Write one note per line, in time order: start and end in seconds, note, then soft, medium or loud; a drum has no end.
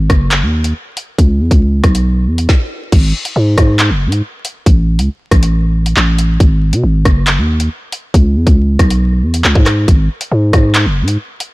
0.10 0.44 F#1 loud
0.10 kick medium
0.10 cross-stick loud
0.10 closed hi-hat medium
0.31 clap loud
0.31 closed hi-hat medium
0.42 0.73 D#2 loud
0.64 closed hi-hat medium
0.97 closed hi-hat medium
1.18 1.42 C#2 loud
1.18 kick loud
1.18 closed hi-hat medium
1.40 1.51 E2 loud
1.51 1.82 C#2 loud
1.51 kick loud
1.51 closed hi-hat medium
1.84 2.29 B1 loud
1.84 kick loud
1.84 cross-stick medium
1.84 closed hi-hat medium
1.95 closed hi-hat medium
2.27 2.48 E2 loud
2.38 closed hi-hat medium
2.49 kick loud
2.49 snare medium
2.92 3.13 G#1 loud
2.92 kick loud
2.92 closed hi-hat medium
2.92 crash loud
3.25 closed hi-hat medium
3.36 3.57 G#2 loud
3.58 3.92 G#2 loud
3.58 kick loud
3.58 cross-stick loud
3.58 closed hi-hat medium
3.79 clap loud
3.79 closed hi-hat medium
3.90 4.08 F#1 loud
4.07 4.22 G#2 loud
4.12 closed hi-hat medium
4.45 closed hi-hat medium
4.66 5.00 A1 loud
4.66 kick loud
4.66 closed hi-hat medium
4.99 5.09 C#2 loud
4.99 closed hi-hat medium
5.31 5.94 A1 loud
5.31 kick loud
5.31 cross-stick loud
5.31 closed hi-hat medium
5.43 closed hi-hat medium
5.86 closed hi-hat medium
5.97 6.38 A1 loud
5.97 clap loud
6.18 closed hi-hat medium
6.40 6.74 G#1 loud
6.40 kick loud
6.40 closed hi-hat medium
6.73 6.83 B2 loud
6.73 closed hi-hat medium
6.84 7.04 G#1 loud
7.05 7.40 F#1 loud
7.05 kick loud
7.05 cross-stick loud
7.05 closed hi-hat medium
7.27 clap loud
7.27 closed hi-hat medium
7.38 7.69 D#2 loud
7.60 closed hi-hat medium
7.92 closed hi-hat medium
8.14 8.37 C#2 loud
8.14 kick loud
8.14 closed hi-hat medium
8.36 8.46 E2 loud
8.47 8.78 C#2 loud
8.47 kick loud
8.47 closed hi-hat medium
8.79 9.24 B1 loud
8.79 kick loud
8.79 cross-stick loud
8.79 closed hi-hat medium
8.90 closed hi-hat medium
9.23 9.43 E2 loud
9.34 closed hi-hat medium
9.44 9.55 C#2 loud
9.44 clap loud
9.55 9.87 G#2 loud
9.55 kick loud
9.66 cross-stick medium
9.66 clap medium
9.66 closed hi-hat medium
9.88 10.09 G#1 loud
9.88 kick loud
9.88 closed hi-hat medium
10.21 closed hi-hat medium
10.32 10.52 G#2 loud
10.53 10.87 G#2 loud
10.53 kick loud
10.53 cross-stick loud
10.53 closed hi-hat medium
10.74 clap loud
10.74 closed hi-hat medium
10.86 11.04 F#1 loud
11.02 11.18 G#2 loud
11.08 closed hi-hat medium
11.40 closed hi-hat medium